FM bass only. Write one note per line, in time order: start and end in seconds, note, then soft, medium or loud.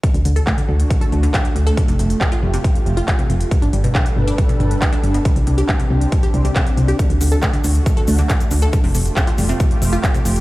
0.14 0.22 D2 loud
0.25 0.41 D2 medium
0.69 0.85 D2 medium
1.12 1.28 D2 medium
1.56 1.72 D2 medium
1.88 1.96 F1 medium
1.99 2.15 F1 medium
2.43 2.59 F1 loud
2.86 3.02 F1 loud
3.30 3.46 F1 loud
3.62 3.70 G1 loud
3.73 3.89 G1 medium
4.17 4.32 G1 medium
4.60 4.76 G1 loud
5.04 5.19 G1 medium
5.36 5.44 C2 loud
5.47 5.63 C2 medium
5.90 6.06 C2 medium
6.34 6.50 C2 loud
6.77 6.93 C2 medium
7.10 7.18 D2 loud
7.21 7.37 D2 medium
7.64 7.80 D2 loud
8.08 8.24 D2 loud
8.51 8.67 D2 medium
8.84 8.92 F1 medium
8.95 9.11 F1 medium
9.39 9.54 F1 loud
9.82 9.98 F1 loud
10.26 10.40 F1 loud